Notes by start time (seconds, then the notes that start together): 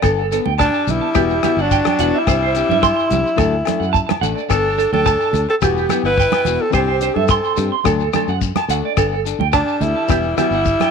0.02 G1 B3 D4 A4, muted steel-string acoustic guitar stroke, kick, cross-stick, low agogo, shekere
0.19 A4
0.32 B3 D4 A4, closed hi-hat, shekere
0.46 D2 G5, high conga
0.58 D4 A5, kick, cross-stick, low agogo, shekere
0.64 G3
0.74 A5, shekere
0.87 B1 B3 D4 E4, closed hi-hat, low conga, shekere
0.92 G3
1.01 A5
1.15 E1 G3 B3 E4 F#4 G4, kick, cross-stick, low agogo, shekere
1.29 G4, shekere
1.43 B3 E4 F#4 G4, cross-stick, closed hi-hat, high conga, low conga, low agogo, shekere
1.57 G1 F#5, shekere
1.62 F#3 D4
1.71 G5, kick, shekere
1.85 G5, cross-stick, high conga, low agogo, shekere
1.99 E1 B3 E4 F#4 F#5, closed hi-hat, low conga, shekere
2.14 E5
2.18 G3 E4
2.27 C2 E3 C4 D4 G4 C5, kick, cross-stick, low agogo, shekere
2.42 C5
2.55 C4 D4 G4, muted clean electric guitar stroke, closed hi-hat, shekere
2.69 G2 E5, high conga, shekere
2.83 C6, kick, cross-stick, low conga, low agogo, shekere
2.97 C6, shekere
3.10 C2 C4 D4 G4, closed hi-hat, high conga, low conga, shekere
3.27 shekere
3.36 D2 F#3 A3 D4 A4, kick, cross-stick, low agogo
3.40 shekere
3.52 muted clean electric guitar stroke
3.65 A3 D4 A4, muted clean electric guitar stroke, cross-stick, closed hi-hat, high conga, low agogo, shekere
3.80 F#2 F#5, shekere
3.93 A5, kick, shekere
4.07 A5, cross-stick, low agogo, shekere
4.11 high conga
4.21 A1 A3 D4 A4 F#5, closed hi-hat, low conga, shekere
4.36 D5, shekere
4.49 G1 B3 D4 A4, kick, cross-stick, low agogo, shekere
4.66 A4
4.76 D4 A4, closed hi-hat, shekere
4.92 D2 D4 A4 G5, high conga
5.06 A5, kick, cross-stick, low agogo, shekere
5.21 A5, shekere
5.32 D2 D4 A4, closed hi-hat, low conga, shekere
5.49 C4 A4, muted clean electric guitar stroke
5.62 E1 G3 B3 E4 F#4 G4, kick, cross-stick, low agogo, shekere
5.77 G4, shekere
5.89 B3 E4 G4, muted steel-string acoustic guitar stroke, cross-stick, closed hi-hat, high conga, low conga, low agogo, shekere
6.03 G1 E4 B4 F#5, shekere
6.18 G5, kick, shekere
6.32 G5, cross-stick, high conga, low agogo, shekere
6.45 E1 B3 E4 F#4, closed hi-hat, low conga, shekere
6.61 C4 A4
6.70 C2 E3 C4 D4 G4 C5, muted steel-string acoustic guitar stroke, kick, cross-stick, shekere
6.75 C4, low agogo
6.88 C5
7.00 D4 G4 C5, closed hi-hat, shekere
7.15 G2 C4 A4 E5, high conga
7.28 C6, kick, cross-stick, low agogo, shekere
7.44 C6, shekere
7.56 G2 C4 D4 G4, closed hi-hat, low conga, shekere
7.72 C6
7.84 D2 F#3 A3 D4 A4, kick, cross-stick, low agogo, shekere
8.00 A4, shekere
8.13 A3 D4 A4, cross-stick, closed hi-hat, high conga, low conga, low agogo, shekere
8.28 F#2 F#5, shekere
8.41 kick, shekere
8.56 A5, cross-stick, high conga, low agogo
8.68 D2 A3 D4 A4 F#5, closed hi-hat, shekere
8.85 D5
8.96 G1 B3 D4 A4, kick, cross-stick, low agogo, shekere
9.12 A4
9.25 D4 A4, closed hi-hat, shekere
9.39 D2 G5, high conga
9.53 G3 D4 A5, kick, cross-stick, low agogo, shekere
9.68 A5, shekere
9.80 D2 D4 E4 A4, closed hi-hat, low conga, shekere
9.85 G3
9.96 A5
10.08 E1 G3 B3 E4 G4, muted steel-string acoustic guitar stroke, kick, cross-stick, low agogo, shekere
10.23 shekere
10.36 B3 E4 F#4 G4, cross-stick, closed hi-hat, high conga, low conga, low agogo, shekere
10.42 G3
10.51 G1 F#5, shekere
10.65 kick, shekere
10.80 G5, cross-stick, high conga, low agogo, shekere